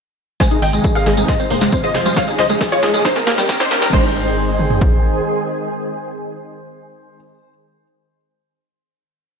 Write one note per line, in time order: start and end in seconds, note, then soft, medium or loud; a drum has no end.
0.40 0.56 C3 medium
0.40 0.56 D#3 medium
0.40 0.49 G#3 medium
0.40 0.56 G#3 medium
0.40 0.56 D#4 medium
0.40 0.47 C5 medium
0.40 0.47 G#5 medium
0.40 0.47 G#5 loud
0.40 kick loud
0.40 snare soft
0.40 closed hi-hat medium
0.40 tambourine medium
0.40 riser medium
0.51 0.57 D#4 medium
0.51 0.58 G#4 medium
0.51 closed hi-hat medium
0.51 tambourine soft
0.62 0.80 G#1 loud
0.62 0.68 D#3 medium
0.62 0.69 D#5 medium
0.62 0.69 G5 medium
0.62 open hi-hat loud
0.73 0.89 C3 medium
0.73 0.89 D#3 medium
0.73 0.82 G#3 loud
0.73 0.89 G#3 medium
0.73 0.89 D#4 medium
0.73 0.80 G#4 medium
0.73 closed hi-hat medium
0.73 tambourine medium
0.84 0.90 G#3 medium
0.84 0.91 G#4 medium
0.84 kick loud
0.84 closed hi-hat medium
0.84 tambourine medium
0.95 1.11 C3 medium
0.95 1.11 D#3 medium
0.95 1.11 G#3 medium
0.95 1.11 D#4 medium
0.95 1.01 G#4 medium
0.95 1.02 G#4 medium
0.95 1.02 F5 medium
0.95 closed hi-hat medium
0.95 mid tom medium
0.95 tambourine soft
1.06 1.24 G#1 medium
1.06 1.15 G#3 medium
1.06 1.13 G#4 medium
1.06 snare medium
1.06 open hi-hat loud
1.17 1.33 C3 medium
1.17 1.33 D#3 medium
1.17 1.21 G#3 medium
1.17 1.33 G#3 medium
1.17 1.33 D#4 medium
1.17 1.24 G#4 medium
1.17 closed hi-hat medium
1.17 tambourine medium
1.28 1.37 G#2 loud
1.28 1.35 C5 medium
1.28 1.35 D#5 medium
1.28 kick loud
1.28 snare medium
1.28 closed hi-hat medium
1.28 tambourine medium
1.39 1.43 C4 medium
1.39 1.46 C5 medium
1.39 closed hi-hat medium
1.39 tambourine soft
1.50 1.68 F1 loud
1.50 1.66 C3 medium
1.50 1.66 F3 medium
1.50 1.66 G#3 medium
1.50 1.56 A#3 loud
1.50 1.66 F4 medium
1.50 1.57 C5 medium
1.50 open hi-hat loud
1.61 1.70 G#3 loud
1.61 snare medium
1.61 closed hi-hat medium
1.61 tambourine medium
1.72 1.88 C3 medium
1.72 1.88 F3 medium
1.72 1.88 G#3 medium
1.72 1.78 C4 medium
1.72 1.88 F4 medium
1.72 1.79 C5 medium
1.72 kick loud
1.72 closed hi-hat medium
1.72 tambourine medium
1.83 1.89 G#4 medium
1.83 1.90 C5 medium
1.83 1.90 D#5 medium
1.83 closed hi-hat medium
1.83 tambourine soft
1.94 2.12 F1 medium
1.94 2.10 C3 medium
1.94 2.10 F3 medium
1.94 2.10 G#3 medium
1.94 2.10 F4 medium
1.94 1.98 G#4 medium
1.94 2.01 C5 medium
1.94 2.02 C5 medium
1.94 snare medium
1.94 open hi-hat loud
2.05 2.11 G3 medium
2.05 2.13 C5 medium
2.05 closed hi-hat medium
2.05 tambourine medium
2.16 2.32 C#3 medium
2.16 2.32 F3 medium
2.16 2.32 G#3 medium
2.16 2.25 G#3 loud
2.16 2.32 D#4 medium
2.16 2.24 C#5 medium
2.16 2.24 F5 medium
2.16 2.24 F5 loud
2.16 kick loud
2.16 snare medium
2.16 closed hi-hat medium
2.16 tambourine medium
2.28 2.33 D#4 loud
2.28 2.35 G#4 medium
2.28 closed hi-hat medium
2.28 tambourine soft
2.39 2.56 C#2 loud
2.39 2.45 D#3 medium
2.39 2.46 C5 medium
2.39 2.46 D#5 medium
2.39 snare medium
2.39 open hi-hat loud
2.49 2.65 C#3 medium
2.49 2.65 F3 medium
2.49 2.58 G#3 loud
2.49 2.65 G#3 medium
2.49 2.65 D#4 medium
2.49 2.57 G#4 medium
2.49 closed hi-hat medium
2.49 tambourine medium
2.61 2.67 G#3 medium
2.61 2.68 G#4 medium
2.61 kick loud
2.61 snare medium
2.61 closed hi-hat medium
2.61 tambourine medium
2.72 2.87 C#3 medium
2.72 2.87 F3 medium
2.72 2.87 G#3 medium
2.72 2.87 D#4 medium
2.72 2.79 F4 medium
2.72 2.78 G#4 medium
2.72 2.79 C#5 medium
2.72 closed hi-hat medium
2.72 mid tom medium
2.72 tambourine soft
2.83 3.00 C#2 medium
2.83 2.92 G#3 medium
2.83 2.90 G#4 medium
2.83 snare medium
2.83 open hi-hat loud
2.94 3.09 C#3 medium
2.94 3.09 F3 medium
2.94 3.09 G#3 medium
2.94 2.97 G#3 medium
2.94 3.09 D#4 medium
2.94 3.01 G#4 medium
2.94 closed hi-hat medium
2.94 tambourine medium
3.05 3.14 G2 loud
3.05 3.12 D#4 medium
3.05 3.12 C5 medium
3.05 kick loud
3.05 snare medium
3.05 closed hi-hat medium
3.05 tambourine medium
3.15 3.19 C4 medium
3.15 3.23 A#4 medium
3.15 snare medium
3.15 closed hi-hat medium
3.15 tambourine soft
3.27 3.44 D#2 loud
3.27 3.42 D#3 medium
3.27 3.42 G3 medium
3.27 3.33 A#3 loud
3.27 3.43 A#3 medium
3.27 3.42 G4 medium
3.27 3.34 A#4 medium
3.27 snare loud
3.27 open hi-hat loud
3.38 3.47 G3 loud
3.38 snare medium
3.38 closed hi-hat medium
3.38 mid tom medium
3.38 tambourine medium
3.49 3.65 D#3 medium
3.49 3.64 G3 medium
3.49 3.64 A#3 medium
3.49 3.55 C4 medium
3.49 3.64 G4 loud
3.49 3.56 A#4 medium
3.49 kick loud
3.49 snare loud
3.49 closed hi-hat medium
3.49 tambourine medium
3.60 3.67 D#4 medium
3.60 3.66 G4 medium
3.60 3.67 C5 loud
3.60 3.67 C5 medium
3.60 snare medium
3.60 closed hi-hat medium
3.60 tambourine soft
3.71 3.89 D#2 medium
3.71 3.87 D#3 medium
3.71 3.87 G3 medium
3.71 3.87 A#3 medium
3.71 3.75 G4 medium
3.71 3.87 G4 medium
3.71 3.78 A#4 medium
3.71 snare loud
3.71 open hi-hat loud
3.82 3.88 G3 medium
3.82 3.89 A#4 medium
3.82 snare medium
3.82 closed hi-hat medium
3.82 tambourine medium
3.93 5.21 G#1 medium
3.93 7.17 D#3 medium
3.93 4.14 G#3 medium
3.93 7.17 G#3 medium
3.93 7.17 C4 medium
3.93 7.17 G#4 loud
3.93 7.17 C5 medium
3.93 7.17 C5 loud
3.93 kick loud
3.93 crash medium
4.59 mid tom medium
4.70 floor tom medium
4.81 kick medium